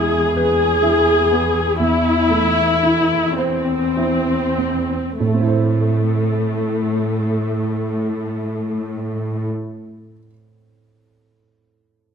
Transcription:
Already playing: grand piano E2 G#3 E4, cello section E2, viola section G#4
0.37 viola section G#4, grand piano B4
0.82 grand piano E4
1.32 grand piano B3
1.80 grand piano E2, viola section E4
2.30 grand piano A3
2.83 grand piano E4
3.38 viola section C4, grand piano C5
3.97 grand piano E4
4.58 grand piano C4
5.20 cello section A2, grand piano A2, viola section A3
5.27 grand piano A3
5.34 grand piano C4
5.41 grand piano E4
5.48 grand piano C5

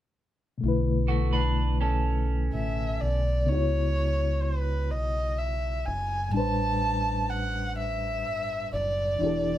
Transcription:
0.58 reed electric piano B2 A3
0.63 fingered electric bass B1, reed electric piano D3 E4
0.68 reed electric piano B4
1.08 clean electric guitar A3 F#4
1.33 clean electric guitar D4 B4
1.81 clean electric guitar C#4 A4
2.54 fingered electric bass A1, erhu E5
3.01 fingered electric bass B1, erhu D5
3.44 reed electric piano C#3 B3
3.49 fingered electric bass C#2, reed electric piano D#4 F#4, erhu C#5
3.55 reed electric piano E4 C#5
4.43 erhu B4
4.91 fingered electric bass B1, erhu D#5
5.38 erhu E5
5.86 fingered electric bass F#1, erhu G#5
6.29 reed electric piano A2 G3
6.34 fingered electric bass A1, reed electric piano D4 B4, erhu A5
6.39 reed electric piano C5
7.30 erhu F#5
7.78 erhu E5
8.25 fingered electric bass G1
8.73 fingered electric bass F#1, erhu D5
9.16 reed electric piano E3 D4
9.21 fingered electric bass E1, reed electric piano E4 G4
9.26 reed electric piano A4

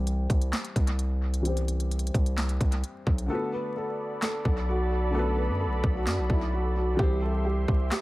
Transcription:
Already playing: 808-style bass C2, felt piano E3 G3 C4 G4 C5
0.07 closed hi-hat
0.30 808-style bass C2, kick, closed hi-hat
0.41 closed hi-hat
0.53 snare, clap, closed hi-hat
0.64 closed hi-hat
0.76 808-style bass C2, kick, closed hi-hat
0.87 closed hi-hat
0.99 closed hi-hat
1.34 closed hi-hat
1.41 felt piano E3 G3
1.45 felt piano C4 G4, closed hi-hat
1.49 felt piano C5
1.57 closed hi-hat
1.68 closed hi-hat
1.80 closed hi-hat
1.91 closed hi-hat
1.99 closed hi-hat
2.07 closed hi-hat
2.14 808-style bass C2, kick, closed hi-hat
2.26 closed hi-hat
2.38 snare, clap, closed hi-hat
2.49 closed hi-hat
2.61 808-style bass C2, kick, closed hi-hat
2.72 closed hi-hat
2.84 closed hi-hat
3.07 808-style bass B1, kick
3.18 closed hi-hat
3.26 felt piano D3 A3, grand piano A4, analog synth pad A4 D5 B5
3.30 felt piano B3 F#4
3.35 felt piano B4
3.53 grand piano B4
3.76 grand piano A4
4.22 grand piano A4, snare, clap
4.45 808-style bass B1, kick
4.69 grand piano F#4
5.10 felt piano D3 A3
5.15 felt piano B3 F#4, grand piano A4
5.19 felt piano B4
5.37 grand piano B4
5.49 808-style bass F#2
5.61 grand piano A4
5.66 808-style bass B1
5.84 808-style bass B1, kick
5.95 grand piano F#4
6.07 808-style bass F#2, snare, clap
6.18 808-style bass B1
6.30 808-style bass B1, grand piano E4, kick
6.53 grand piano F#4
6.76 grand piano F#4
6.95 felt piano E3 G3
6.99 808-style bass C2, felt piano C4 G4, grand piano G4, analog synth pad G4 E5 C6, kick
7.03 felt piano C5
7.22 grand piano A4
7.45 grand piano G4
7.68 808-style bass C2, kick
7.91 grand piano G4, snare, clap

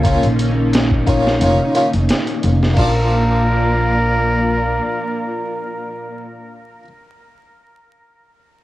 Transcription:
Already playing: upright bass C#2, string machine A#3 C#4
0.04 harpsichord A#3 C#4 F4 C#5, string machine D#4, kick, closed hi-hat
0.23 upright bass A#1, closed hi-hat
0.39 closed hi-hat
0.73 snare, closed hi-hat
0.91 kick
1.07 harpsichord A#3 C#4 F4 C#5, kick, closed hi-hat
1.27 snare
1.41 upright bass F1, harpsichord A#3 C#4 F4 C#5, closed hi-hat
1.75 harpsichord A#3 C#4 F4 C#5, closed hi-hat
1.94 upright bass F1, closed hi-hat
2.09 snare, closed hi-hat
2.27 closed hi-hat
2.43 upright bass F1, closed hi-hat
2.63 snare
2.74 upright bass A#1, harpsichord A#3 D4, kick, crash
2.78 string machine A#3 F4 D5, harpsichord F4 D5, muted trumpet A#4

